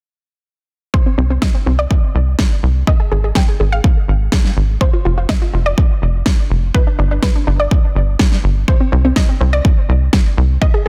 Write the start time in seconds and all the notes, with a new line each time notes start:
0.94 C5, kick
1.06 C4
1.18 C2 C4
1.30 C4
1.42 D#5, kick, snare
1.55 C4
1.66 C2 C4
1.79 D5
1.91 kick
2.15 C2
2.39 kick, snare
2.63 C2
2.87 D#5, kick
3.00 G#4
3.12 G#1 G#4
3.24 G#4
3.35 G5, kick, snare
3.48 G#4
3.60 G#1 G#4
3.72 F5
3.84 kick
4.08 G#1
4.32 kick, snare
4.45 snare
4.57 G#1
4.81 C5, kick
4.93 F4
5.05 F1 F4
5.18 F4
5.29 D#5, kick, snare
5.42 F4
5.53 F1 F4
5.66 D5
5.78 kick
6.02 F1
6.26 kick, snare
6.50 F1
6.74 B4, kick
6.87 D4
6.99 G1 D4
7.11 D4
7.23 B4, kick, snare
7.35 D4
7.47 G1 D4
7.60 D5
7.71 kick
7.95 G1
8.19 kick, snare
8.32 snare
8.44 G1
8.68 C5, kick
8.80 C4
8.92 C2 C4
9.05 C4
9.16 D#5, kick, snare
9.29 C4
9.41 C2 C4
9.53 D5
9.65 kick
9.89 C2
10.13 kick, snare
10.37 C2
10.62 D#5, kick
10.74 G#4